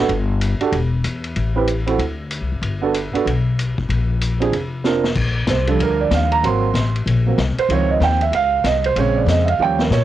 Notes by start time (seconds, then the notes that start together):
0.09 G1, ride
0.41 hi-hat pedal, ride
0.61 D4 F#4 G4 A4, muted upright bass stroke, ride
0.72 E1, ride
1.04 E2, hi-hat pedal, ride
1.24 ride
1.36 A1, ride
1.56 C4 E4 G4 B4
1.67 hi-hat pedal, ride
1.87 C4 E4 F#4 A4, ride
1.99 D2, ride
2.31 hi-hat pedal, ride
2.41 C2
2.52 F#1
2.62 G1, ride
2.82 B3 D4 F#4 A4
2.95 hi-hat pedal, ride
3.14 B3 D4 F#4 A4, muted upright bass stroke, ride
3.26 B1, ride
3.59 hi-hat pedal, ride
3.78 B1, kick
3.89 A#1, ride
4.21 hi-hat pedal, ride
4.40 C4 D4 F4 G#4, ride
4.52 F1, ride
4.84 C4 D4 F4 A#4, snare, hi-hat pedal
5.04 snare
5.15 A#1, kick, crash
5.47 C2 C5, snare, hi-hat pedal, ride
5.67 F3 G3 D4 A4, ride
5.79 D2 A#4, ride
6.01 D5
6.11 D#2 F5, snare, hi-hat pedal, ride
6.32 A#5, ride
6.43 G#1 F#3 A#3 C4 C6, ride
6.74 A1, snare, hi-hat pedal, ride
6.95 ride
7.06 A#1, ride
7.26 F#3 A#3 C4
7.38 C2, snare, hi-hat pedal, ride
7.58 C5, muted upright bass stroke, ride
7.69 C#2 D#3 F3 C4 C#5, ride
7.91 D#5
8.00 D#2 G5, snare, hi-hat pedal, ride
8.21 E5, ride
8.32 C#2 F5, ride
8.64 C2 D#5, snare, hi-hat pedal, ride
8.84 C5, ride
8.96 A#1 C#3 G#3 C4 C#5, ride
9.17 D5
9.26 F2 D#5, snare, hi-hat pedal, ride
9.45 E5, ride
9.49 F5
9.59 D#2 F3 G3 C#4 G5
9.79 A#4, snare
9.91 A#2 C#5, snare, hi-hat pedal